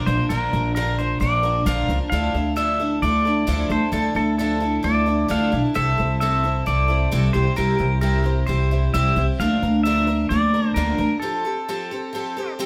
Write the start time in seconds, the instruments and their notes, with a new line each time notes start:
0.06 upright bass A#1, twelve-string acoustic guitar F3 A#3 D4 A#4, pedal steel guitar C5
0.29 upright bass A#1, twelve-string acoustic guitar A#2 D3 F3 A#3 D4 A#4, pedal steel guitar A#4
0.53 upright bass A#1, twelve-string acoustic guitar F3 A#3 D4 A#4
0.75 twelve-string acoustic guitar A#2 D3 F3 A#3 D4 A#4, pedal steel guitar A#4
0.98 twelve-string acoustic guitar F3 A#3 D4 A#4, pedal steel guitar C5
1.20 upright bass A#1, twelve-string acoustic guitar F3 A#3 D4 A#4, pedal steel guitar D5
1.43 twelve-string acoustic guitar F3 A#3 D4 A#4
1.66 upright bass A#1, twelve-string acoustic guitar A#2 D3 F3 A#3 D4 A#4, pedal steel guitar F5
1.89 upright bass C#2, twelve-string acoustic guitar F3 A#3 D4 A#4
2.10 upright bass D2, twelve-string acoustic guitar D3 F3 D4 E4 A4, pedal steel guitar F5
2.34 upright bass D2, twelve-string acoustic guitar D4 E4 A4
2.56 twelve-string acoustic guitar D3 F3 D4 E4 A4, pedal steel guitar E5
2.80 twelve-string acoustic guitar D4 E4 A4
3.02 upright bass D2, twelve-string acoustic guitar F3 D4 E4 A4, pedal steel guitar D5
3.25 twelve-string acoustic guitar D4 E4 A4
3.47 upright bass D2, twelve-string acoustic guitar D3 F3 D4 E4 A4
3.70 upright bass D2, twelve-string acoustic guitar D4 E4 A4, pedal steel guitar C5
3.92 upright bass D2, twelve-string acoustic guitar D3 F3 D4 E4 A4, pedal steel guitar A4
4.15 upright bass D2, twelve-string acoustic guitar D4 E4 A4, pedal steel guitar A4
4.38 twelve-string acoustic guitar D3 F3 D4 E4 A4, pedal steel guitar A4
4.60 twelve-string acoustic guitar D4 E4 A4
4.83 upright bass D2, twelve-string acoustic guitar F3 D4 E4 A4, pedal steel guitar D5
5.06 twelve-string acoustic guitar D4 E4 A4
5.28 upright bass D2, twelve-string acoustic guitar D3 F3 D4 E4 A4, pedal steel guitar F5
5.52 upright bass B1, twelve-string acoustic guitar D4 E4 A4
5.74 upright bass C2, twelve-string acoustic guitar C3 A3 C4 E4 A4, pedal steel guitar E5
5.98 upright bass C2, twelve-string acoustic guitar C4 E4 A4
6.20 twelve-string acoustic guitar C3 A3 C4 E4 A4, pedal steel guitar E5
6.44 twelve-string acoustic guitar C4 E4 A4
6.66 upright bass C2, twelve-string acoustic guitar A3 C4 E4 A4, pedal steel guitar D5
6.88 twelve-string acoustic guitar C4 E4 A4
7.11 upright bass C2, twelve-string acoustic guitar C3 A3 C4 E4 A4
7.33 upright bass C2, twelve-string acoustic guitar C4 E4 G4, pedal steel guitar C5
7.56 upright bass C2, twelve-string acoustic guitar C3 G3 C4 E4 G4, pedal steel guitar A#4
7.79 upright bass C2, twelve-string acoustic guitar C4 E4 G4
8.01 twelve-string acoustic guitar C3 G3 C4 E4 G4, pedal steel guitar A#4
8.24 twelve-string acoustic guitar C4 E4 G4
8.46 upright bass C2, twelve-string acoustic guitar G3 C4 E4 G4, pedal steel guitar C5
8.71 twelve-string acoustic guitar C4 E4 G4
8.94 upright bass C2, twelve-string acoustic guitar C3 G3 C4 E4 G4, pedal steel guitar E5
9.16 upright bass C2, twelve-string acoustic guitar C4 E4 G4
9.39 upright bass D2, twelve-string acoustic guitar D3 F3 A#3 D4 A#4, pedal steel guitar F5
9.62 upright bass D2, twelve-string acoustic guitar A#3 D4 A#4
9.83 twelve-string acoustic guitar D3 F3 A#3 D4 A#4, pedal steel guitar E5
10.07 twelve-string acoustic guitar A#3 D4 A#4
10.29 upright bass D2, twelve-string acoustic guitar F3 A#3 D4 A#4, pedal steel guitar D5
10.54 twelve-string acoustic guitar A#3 D4 A#4
10.74 upright bass D2, twelve-string acoustic guitar D3 F3 A#3 D4 A#4, pedal steel guitar A#4
10.98 upright bass D2, twelve-string acoustic guitar A#3 D4 A#4
11.20 twelve-string acoustic guitar F3 C4 G4 A4, pedal steel guitar A4
11.45 twelve-string acoustic guitar C4 G4 A4
11.68 twelve-string acoustic guitar F3 C4 G4 A4
11.91 twelve-string acoustic guitar C4 G4 A4
12.13 twelve-string acoustic guitar F3 C4 G4 A4
12.37 twelve-string acoustic guitar C4 G4 A4
12.59 twelve-string acoustic guitar F3 C4 G4 A4